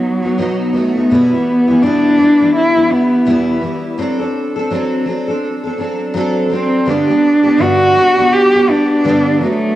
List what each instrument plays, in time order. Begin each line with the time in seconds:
Already playing: cello F#3, steel-string acoustic guitar B3 D#4 F#4
0.23 steel-string acoustic guitar B3 D#4 F#4
0.38 steel-string acoustic guitar B2 F#3 B3 D#4 F#4
0.73 steel-string acoustic guitar F#3 B3 D#4 F#4, cello A3
0.95 steel-string acoustic guitar B3 D#4 F#4
1.10 steel-string acoustic guitar E2 B2 E3 G3 B3 E4, cello B3
1.32 steel-string acoustic guitar E3 G3 B3 E4
1.67 steel-string acoustic guitar E3 G3 B3 E4
1.82 steel-string acoustic guitar E2 B2 E3 G3 B3 E4, cello D4
2.17 steel-string acoustic guitar E3 G3 B3 E4
2.39 steel-string acoustic guitar E3 G3 B3 E4
2.55 cello E4
2.75 steel-string acoustic guitar E3 G3 B3 E4
2.89 steel-string acoustic guitar E3 G3 B3 E4, cello B3
3.25 steel-string acoustic guitar E2 B2 E3 G3 B3 E4
3.61 steel-string acoustic guitar E3 G3 B3 E4
3.98 steel-string acoustic guitar F#3 C4 D4 A4
4.19 steel-string acoustic guitar C4 D4 A4
4.56 steel-string acoustic guitar C4 D4 A4
4.71 steel-string acoustic guitar F#3 C4 D4 A4
5.06 steel-string acoustic guitar F#3 C4 D4 A4
5.27 steel-string acoustic guitar C4 D4 A4
5.64 steel-string acoustic guitar C4 D4 A4
5.78 steel-string acoustic guitar F#3 C4 D4 A4
6.14 steel-string acoustic guitar F#3 C4 D4 A4
6.50 steel-string acoustic guitar F#3 C4 D4 A4
6.54 cello C4
6.86 steel-string acoustic guitar G2 D3 G3 B3 D4 G4
6.90 cello D4
7.07 steel-string acoustic guitar G3 B3 D4 G4
7.43 steel-string acoustic guitar G3 B3 D4 G4
7.58 steel-string acoustic guitar G2 D3 G3 B3 D4
7.62 cello F#4
7.95 steel-string acoustic guitar G3 B3 D4 G4
8.16 steel-string acoustic guitar G3 B3 D4 G4
8.33 cello G4
8.53 steel-string acoustic guitar G3 B3 D4 G4
8.68 steel-string acoustic guitar G3 B3 D4 G4, cello D4
9.04 steel-string acoustic guitar G2 D3 G3 B3 D4 G4
9.40 steel-string acoustic guitar F#3 B3 D#4 F#4, cello A3